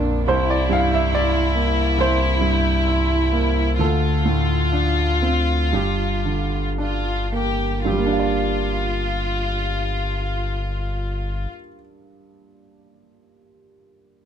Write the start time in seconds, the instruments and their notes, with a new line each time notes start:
Already playing: grand piano A#1 F2 A#3 D4, sub bass A#1, violin section D4
0.27 grand piano C2 C5, sub bass C2, violin section E4
0.50 grand piano D5
0.69 grand piano G2 F5
0.94 grand piano E5
1.12 grand piano E4 D5
1.55 grand piano A#3
1.98 grand piano C2 C5
2.41 grand piano G2
2.87 grand piano E4
3.32 grand piano A#3
3.79 grand piano D2 A4, sub bass D2, violin section F4
4.25 grand piano A2
4.72 grand piano D4
5.22 grand piano C4
5.73 sub bass G1, grand piano G2 G4
6.25 grand piano D3
6.78 grand piano D4, violin section F4
7.32 grand piano A#3, violin section G4
7.85 sub bass G1, grand piano G2 G4, violin section F4
7.92 grand piano G3
7.98 grand piano A#3
8.06 grand piano D4
8.13 grand piano F4
8.19 grand piano D5